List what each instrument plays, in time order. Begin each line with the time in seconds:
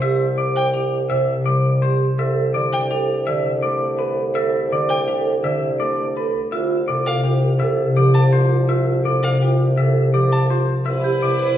Already playing: bassoon C2, harp C3 G3
0.02 vibraphone G4, clean electric guitar E5
0.38 vibraphone C5, clean electric guitar D5
0.56 violin G5
0.74 clean electric guitar G4, vibraphone G4
1.10 harp C3, vibraphone C5, clean electric guitar E5
1.46 harp G3, clean electric guitar D5
1.82 vibraphone G4, clean electric guitar C5
2.19 bassoon C2, vibraphone A4, clean electric guitar E5
2.54 harp D3, clean electric guitar D5, vibraphone D5
2.73 violin G5
2.91 clean electric guitar G4, vibraphone A4
3.27 harp D3, vibraphone D5, clean electric guitar E5
3.62 harp A3, clean electric guitar D5
3.99 vibraphone A4, clean electric guitar B4
4.35 vibraphone A4, clean electric guitar E5
4.72 harp D3, clean electric guitar D5, vibraphone D5
4.89 violin G5
5.08 clean electric guitar G4, vibraphone A4
5.44 harp D3, vibraphone D5, clean electric guitar E5
5.80 harp A3, clean electric guitar D5
6.17 vibraphone A4, clean electric guitar B4
6.52 bassoon C2, vibraphone F4, clean electric guitar E5
6.88 harp C3, vibraphone A4, clean electric guitar D5
7.06 violin F5
7.24 vibraphone F4, clean electric guitar G4
7.60 harp C3, vibraphone A4, clean electric guitar E5
7.96 harp F3, vibraphone G4, clean electric guitar D5
8.14 violin A5
8.33 vibraphone F4, clean electric guitar C5
8.69 vibraphone F4, clean electric guitar E5
9.05 harp C3, vibraphone A4, clean electric guitar D5
9.23 violin F5
9.42 vibraphone F4, clean electric guitar G4
9.77 harp C3, vibraphone A4, clean electric guitar E5
10.14 harp F3, vibraphone G4, clean electric guitar D5
10.32 violin A5
10.50 vibraphone F4, clean electric guitar C5
10.86 bassoon C2, violin section E4 B4, clean electric guitar E5
11.04 vibraphone G4
11.22 harp C3, clean electric guitar D5
11.41 vibraphone C5